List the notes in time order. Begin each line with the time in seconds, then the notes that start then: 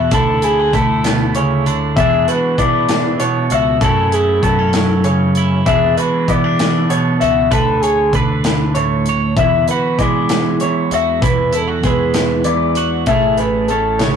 Already playing: E2 E3 D4 E5
0.00 F#4
0.11 D2 D3 E4 A4, kick, closed hi-hat
0.42 E4 G#4, closed hi-hat
0.60 F#4
0.73 D2 A3 E4 A4, kick, closed hi-hat
1.04 B2, snare, closed hi-hat
1.35 C#3 C#5, closed hi-hat
1.66 D3, closed hi-hat
1.96 E2 E3 G#3 D4 E5, kick, closed hi-hat
2.01 G#4
2.28 F#4 B4, closed hi-hat
2.58 E3 D4 D5, kick, closed hi-hat
2.89 snare, closed hi-hat
3.20 B2 C#5, closed hi-hat
3.50 C#2 F#4 E5, closed hi-hat
3.81 F#2 F#3 A3 C#4 E4 A4, kick, closed hi-hat
4.12 E4 G#4, closed hi-hat
4.43 F#2 F#3 B3 A4, kick, closed hi-hat
4.59 C#4
4.73 snare, closed hi-hat
5.04 C#3 C#5, closed hi-hat
5.35 E4, closed hi-hat
5.66 E2 E3 G#3 D4 G#4 E5, kick, closed hi-hat
5.97 F#4 B4, closed hi-hat
6.28 E3 B3 D5, kick, closed hi-hat
6.44 D4
6.59 snare, closed hi-hat
6.90 B2 C#5, closed hi-hat
7.20 C#2 F#4 E5, closed hi-hat
7.51 D2 D3 A4 B4, kick, closed hi-hat
7.82 G#4 C#5, closed hi-hat
8.13 D2 D4 A4 B4, kick, closed hi-hat
8.44 snare, closed hi-hat
8.75 A2 C#5, closed hi-hat
9.06 C#5, closed hi-hat
9.37 E2 E4 E5, kick, closed hi-hat
9.68 F#4 B4, closed hi-hat
9.99 E3 G#3 E4 D5, kick, closed hi-hat
10.29 snare, closed hi-hat
10.60 E2 C#5, closed hi-hat
10.91 E2 F#4 E5, closed hi-hat
11.22 E2 E4 B4, kick, closed hi-hat
11.53 E4 A4, closed hi-hat
11.68 F#4
11.83 E2 G#3 E4 B4, kick, closed hi-hat
12.14 snare, closed hi-hat
12.44 E2 D5, closed hi-hat
12.75 F#4, closed hi-hat
13.06 A1 A2 A3 C#4 E5, kick, closed hi-hat
13.10 E4 G#4
13.38 E4 B4, closed hi-hat
13.68 A3 C#4 A4, closed hi-hat
13.99 C#3 C#5, snare, closed hi-hat